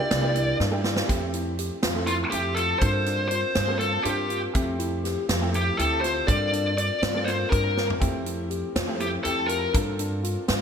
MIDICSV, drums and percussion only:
0, 0, Header, 1, 2, 480
1, 0, Start_track
1, 0, Key_signature, -1, "major"
1, 0, Tempo, 494641
1, 1058, Time_signature, 7, 3, 24, 8
1, 10300, End_track
2, 0, Start_track
2, 0, Title_t, "Drums"
2, 107, Note_on_c, 9, 38, 112
2, 107, Note_on_c, 9, 42, 76
2, 204, Note_off_c, 9, 38, 0
2, 204, Note_off_c, 9, 42, 0
2, 344, Note_on_c, 9, 42, 59
2, 441, Note_off_c, 9, 42, 0
2, 582, Note_on_c, 9, 38, 65
2, 679, Note_off_c, 9, 38, 0
2, 817, Note_on_c, 9, 38, 81
2, 914, Note_off_c, 9, 38, 0
2, 934, Note_on_c, 9, 38, 86
2, 1032, Note_off_c, 9, 38, 0
2, 1060, Note_on_c, 9, 42, 68
2, 1061, Note_on_c, 9, 36, 83
2, 1157, Note_off_c, 9, 42, 0
2, 1158, Note_off_c, 9, 36, 0
2, 1296, Note_on_c, 9, 42, 52
2, 1393, Note_off_c, 9, 42, 0
2, 1539, Note_on_c, 9, 42, 58
2, 1636, Note_off_c, 9, 42, 0
2, 1773, Note_on_c, 9, 38, 103
2, 1773, Note_on_c, 9, 42, 71
2, 1870, Note_off_c, 9, 38, 0
2, 1870, Note_off_c, 9, 42, 0
2, 2009, Note_on_c, 9, 42, 54
2, 2106, Note_off_c, 9, 42, 0
2, 2250, Note_on_c, 9, 42, 76
2, 2347, Note_off_c, 9, 42, 0
2, 2490, Note_on_c, 9, 42, 57
2, 2587, Note_off_c, 9, 42, 0
2, 2728, Note_on_c, 9, 42, 64
2, 2734, Note_on_c, 9, 36, 92
2, 2826, Note_off_c, 9, 42, 0
2, 2831, Note_off_c, 9, 36, 0
2, 2972, Note_on_c, 9, 38, 29
2, 2972, Note_on_c, 9, 42, 52
2, 3069, Note_off_c, 9, 38, 0
2, 3069, Note_off_c, 9, 42, 0
2, 3209, Note_on_c, 9, 42, 52
2, 3306, Note_off_c, 9, 42, 0
2, 3448, Note_on_c, 9, 38, 106
2, 3448, Note_on_c, 9, 42, 71
2, 3545, Note_off_c, 9, 38, 0
2, 3545, Note_off_c, 9, 42, 0
2, 3693, Note_on_c, 9, 42, 51
2, 3790, Note_off_c, 9, 42, 0
2, 3932, Note_on_c, 9, 42, 79
2, 4029, Note_off_c, 9, 42, 0
2, 4172, Note_on_c, 9, 42, 54
2, 4269, Note_off_c, 9, 42, 0
2, 4412, Note_on_c, 9, 42, 73
2, 4416, Note_on_c, 9, 36, 90
2, 4509, Note_off_c, 9, 42, 0
2, 4513, Note_off_c, 9, 36, 0
2, 4654, Note_on_c, 9, 42, 59
2, 4751, Note_off_c, 9, 42, 0
2, 4900, Note_on_c, 9, 38, 31
2, 4900, Note_on_c, 9, 42, 55
2, 4997, Note_off_c, 9, 38, 0
2, 4997, Note_off_c, 9, 42, 0
2, 5134, Note_on_c, 9, 38, 99
2, 5134, Note_on_c, 9, 42, 81
2, 5231, Note_off_c, 9, 38, 0
2, 5231, Note_off_c, 9, 42, 0
2, 5377, Note_on_c, 9, 42, 53
2, 5474, Note_off_c, 9, 42, 0
2, 5622, Note_on_c, 9, 42, 74
2, 5719, Note_off_c, 9, 42, 0
2, 5862, Note_on_c, 9, 38, 32
2, 5862, Note_on_c, 9, 42, 58
2, 5959, Note_off_c, 9, 38, 0
2, 5959, Note_off_c, 9, 42, 0
2, 6095, Note_on_c, 9, 42, 66
2, 6097, Note_on_c, 9, 36, 91
2, 6192, Note_off_c, 9, 42, 0
2, 6194, Note_off_c, 9, 36, 0
2, 6340, Note_on_c, 9, 42, 51
2, 6437, Note_off_c, 9, 42, 0
2, 6580, Note_on_c, 9, 42, 59
2, 6677, Note_off_c, 9, 42, 0
2, 6819, Note_on_c, 9, 38, 104
2, 6819, Note_on_c, 9, 42, 68
2, 6916, Note_off_c, 9, 38, 0
2, 6916, Note_off_c, 9, 42, 0
2, 7060, Note_on_c, 9, 38, 28
2, 7060, Note_on_c, 9, 42, 49
2, 7157, Note_off_c, 9, 38, 0
2, 7157, Note_off_c, 9, 42, 0
2, 7300, Note_on_c, 9, 36, 100
2, 7303, Note_on_c, 9, 42, 68
2, 7397, Note_off_c, 9, 36, 0
2, 7400, Note_off_c, 9, 42, 0
2, 7542, Note_on_c, 9, 38, 58
2, 7639, Note_off_c, 9, 38, 0
2, 7667, Note_on_c, 9, 43, 75
2, 7764, Note_off_c, 9, 43, 0
2, 7777, Note_on_c, 9, 42, 69
2, 7778, Note_on_c, 9, 36, 89
2, 7874, Note_off_c, 9, 42, 0
2, 7875, Note_off_c, 9, 36, 0
2, 8017, Note_on_c, 9, 42, 51
2, 8114, Note_off_c, 9, 42, 0
2, 8255, Note_on_c, 9, 42, 52
2, 8352, Note_off_c, 9, 42, 0
2, 8499, Note_on_c, 9, 38, 110
2, 8499, Note_on_c, 9, 42, 83
2, 8596, Note_off_c, 9, 38, 0
2, 8596, Note_off_c, 9, 42, 0
2, 8736, Note_on_c, 9, 42, 54
2, 8833, Note_off_c, 9, 42, 0
2, 8974, Note_on_c, 9, 42, 83
2, 9071, Note_off_c, 9, 42, 0
2, 9212, Note_on_c, 9, 42, 64
2, 9309, Note_off_c, 9, 42, 0
2, 9455, Note_on_c, 9, 42, 79
2, 9457, Note_on_c, 9, 36, 102
2, 9552, Note_off_c, 9, 42, 0
2, 9554, Note_off_c, 9, 36, 0
2, 9694, Note_on_c, 9, 42, 62
2, 9791, Note_off_c, 9, 42, 0
2, 9941, Note_on_c, 9, 42, 62
2, 10038, Note_off_c, 9, 42, 0
2, 10174, Note_on_c, 9, 38, 100
2, 10174, Note_on_c, 9, 42, 75
2, 10271, Note_off_c, 9, 38, 0
2, 10271, Note_off_c, 9, 42, 0
2, 10300, End_track
0, 0, End_of_file